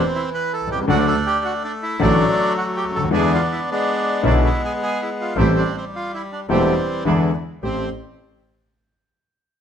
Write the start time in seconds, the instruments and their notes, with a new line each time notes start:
Already playing: bandoneon E3 C4
0.16 bandoneon E4
0.34 bandoneon B4
0.53 bandoneon A4
0.60 double bass C2
0.67 grand piano B1
0.71 grand piano C2, bandoneon G4
0.81 grand piano C#2
0.88 double bass D2, grand piano D2 D3 F#3 A3 F#4, bandoneon A3 D4 F#4
1.08 bandoneon A4
1.27 bandoneon G4
1.45 bandoneon F#4
1.64 bandoneon D4
1.83 bandoneon E4
1.99 grand piano A1 A2 D3 F#3 A3 F#4, double bass A1, bandoneon F#3 A3 D4 F#4
2.58 bandoneon F#4
2.77 bandoneon G4
2.84 double bass D2
2.90 grand piano C#2
2.96 grand piano D2, bandoneon A4
3.04 grand piano D#2
3.11 grand piano E2 D3 E3 G#3 B3 E4, double bass E2, bandoneon G#3 B3 D4 E4 G#4
3.34 bandoneon F4
3.52 bandoneon E4
3.71 bandoneon G#3 B3 D4
4.23 grand piano B1 B2 D3 G#3 B3 E4, double bass B1, bandoneon G#3 B3 D4 E4
4.46 bandoneon E4
4.65 bandoneon G#4
4.83 bandoneon G#4
5.02 bandoneon E4
5.21 bandoneon F4
5.36 grand piano A1 A2 C3 G3 A3 E4, double bass A1, bandoneon G3 A3 C4 E4 G4
5.58 bandoneon D4
5.77 bandoneon C4
5.96 bandoneon F4
6.14 bandoneon E4
6.32 bandoneon D4
6.49 grand piano E1 E2 C3 G3 A3 E4, double bass E1, bandoneon E3 G3 A3 C4 G4
6.53 bandoneon C4
7.05 grand piano E2 D3 E3 G#3 B3 E4, double bass E2, bandoneon G#3 D4 E4
7.62 double bass A1, grand piano A1 A3 C4 G4, bandoneon A3 C4 G4